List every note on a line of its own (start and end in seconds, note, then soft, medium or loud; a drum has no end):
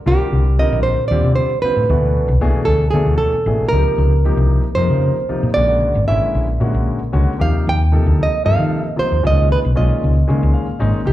0.06 0.16 C2 medium
0.06 0.43 D3 medium
0.06 0.43 G3 medium
0.06 0.43 C4 medium
0.06 0.44 F4 medium
0.06 0.59 G4 medium
0.06 0.44 A#4 medium
0.33 0.63 C2 medium
0.59 0.96 D3 medium
0.59 0.96 G3 medium
0.59 0.96 C4 medium
0.59 0.96 F4 medium
0.59 0.96 A#4 medium
0.59 0.83 D#5 medium
0.73 0.93 A#1 medium
0.83 1.07 C5 medium
1.08 1.21 D#2 medium
1.08 1.48 D3 medium
1.08 1.48 G3 medium
1.08 1.49 C4 medium
1.08 1.49 F4 medium
1.08 1.49 G4 medium
1.08 1.35 D5 medium
1.24 1.45 C3 medium
1.36 1.62 C5 medium
1.62 1.82 D3 medium
1.62 1.82 G3 medium
1.62 1.82 C4 medium
1.62 1.83 F4 medium
1.62 2.65 B4 medium
1.62 1.83 C5 medium
1.62 muted fretless electric bass stroke soft
1.77 1.87 A2 medium
1.89 2.20 D2 medium
1.89 2.27 B2 medium
1.89 2.27 E3 medium
1.89 2.27 A3 medium
1.89 2.27 D4 medium
1.89 2.27 F#4 medium
2.28 2.39 C2 medium
2.41 2.52 C2 medium
2.41 2.79 B2 medium
2.41 2.79 E3 medium
2.41 2.79 A3 medium
2.41 2.79 D4 medium
2.41 2.79 G#4 medium
2.65 2.88 D2 medium
2.65 2.90 A4 medium
2.91 3.31 B2 medium
2.91 3.04 D3 medium
2.91 3.31 E3 medium
2.91 3.32 A3 medium
2.91 3.17 G#4 medium
2.95 3.32 D4 medium
2.95 3.32 A4 medium
3.06 3.17 D2 medium
3.18 3.68 A4 medium
3.33 muted fretless electric bass stroke soft
3.46 3.57 A1 medium
3.46 3.65 B2 medium
3.46 3.66 E3 medium
3.46 3.66 A3 medium
3.46 3.66 D4 medium
3.46 3.66 G#4 medium
3.69 3.83 C#2 medium
3.69 4.10 C3 medium
3.69 4.75 A#4 medium
3.73 4.10 F3 medium
3.73 4.10 A#3 medium
3.73 4.11 D#4 medium
3.73 4.11 G4 medium
3.98 4.29 C#2 medium
4.24 4.62 C3 medium
4.24 4.63 F3 medium
4.24 4.62 A#3 medium
4.24 4.63 D#4 medium
4.24 4.63 G4 medium
4.37 4.58 C2 medium
4.75 4.87 F2 medium
4.75 5.15 C3 medium
4.75 5.15 F3 medium
4.75 5.15 A#3 medium
4.75 5.15 D#4 medium
4.75 5.15 A#4 medium
4.75 5.54 C5 medium
4.90 5.11 C#3 medium
5.29 5.48 C3 medium
5.29 5.48 F3 medium
5.29 5.48 A#3 medium
5.29 5.48 D#4 medium
5.29 5.49 F4 medium
5.29 muted fretless electric bass stroke soft
5.43 5.53 A#2 medium
5.54 5.87 A#1 loud
5.54 5.93 C#3 medium
5.54 5.93 D3 medium
5.54 5.93 G#3 medium
5.54 5.93 A#3 medium
5.54 5.93 F#4 medium
5.54 6.07 D5 loud
5.95 6.06 G#1 medium
6.07 6.19 G#1 medium
6.07 6.46 D3 medium
6.07 6.46 G#3 medium
6.07 6.46 A#3 medium
6.07 6.46 C#4 medium
6.07 6.46 E4 medium
6.07 6.63 E5 medium
6.35 6.55 A#1 medium
6.60 6.71 A#2 medium
6.60 6.98 D3 medium
6.60 6.98 G#3 medium
6.60 6.98 A#3 medium
6.60 6.98 C#4 medium
6.60 6.98 F#4 medium
6.74 6.85 A#1 medium
7.01 muted fretless electric bass stroke soft
7.13 7.24 C#2 medium
7.13 7.32 D3 medium
7.13 7.32 G#3 medium
7.13 7.32 A#3 medium
7.13 7.32 C#4 medium
7.13 7.32 F#4 medium
7.39 7.51 D#2 medium
7.39 7.77 C3 medium
7.39 7.77 F3 medium
7.39 7.77 A#3 medium
7.39 7.77 D#4 medium
7.39 7.77 G4 medium
7.39 7.65 F5 medium
7.67 7.97 D#2 medium
7.67 8.22 G5 loud
7.92 8.29 C3 medium
7.92 8.30 F3 medium
7.92 8.30 A#3 medium
7.92 8.30 D#4 medium
7.92 8.30 A4 medium
8.06 8.26 D2 medium
8.23 8.45 D#5 medium
8.44 8.56 G2 medium
8.44 8.82 C3 medium
8.44 8.82 F3 medium
8.44 8.82 A#3 medium
8.44 8.82 D#4 medium
8.44 8.83 A4 medium
8.44 8.89 F5 medium
8.59 8.79 D#3 medium
8.89 8.99 D#5 medium
8.96 9.15 C3 medium
8.96 9.15 F3 medium
8.96 9.16 A#3 medium
8.96 9.16 D#4 medium
8.96 9.16 F4 medium
8.96 9.25 C5 medium
8.96 muted fretless electric bass stroke soft
9.12 9.21 D#2 medium
9.23 9.55 C#2 medium
9.23 9.60 A#2 medium
9.23 9.61 D#3 medium
9.23 9.61 G#3 medium
9.23 9.61 C#4 medium
9.23 9.61 F4 medium
9.23 9.52 D#5 medium
9.52 9.59 B4 medium
9.65 9.74 B1 medium
9.75 9.87 B1 medium
9.75 10.13 A#2 medium
9.75 10.13 D#3 medium
9.75 10.13 G#3 medium
9.75 10.13 C#4 medium
9.75 10.13 F4 medium
9.75 10.51 D#5 medium
10.04 10.23 C#2 medium
10.27 10.65 A#2 medium
10.27 10.39 C#3 medium
10.27 10.65 D#3 medium
10.27 10.65 G#3 medium
10.27 10.66 C#4 medium
10.27 10.66 G#4 medium
10.43 10.52 C#2 medium
10.54 10.78 F5 medium
10.69 muted fretless electric bass stroke soft
10.79 10.91 G#1 medium
10.79 10.99 A#2 medium
10.79 10.99 D#3 medium
10.79 10.99 G#3 medium
10.79 10.99 C#4 medium
10.79 10.99 D#4 medium
10.79 11.05 D#5 medium
11.05 11.13 C2 medium
11.05 11.13 C3 medium
11.05 11.13 F3 medium
11.05 11.13 A#3 medium
11.05 11.13 D#4 medium
11.05 11.13 G4 medium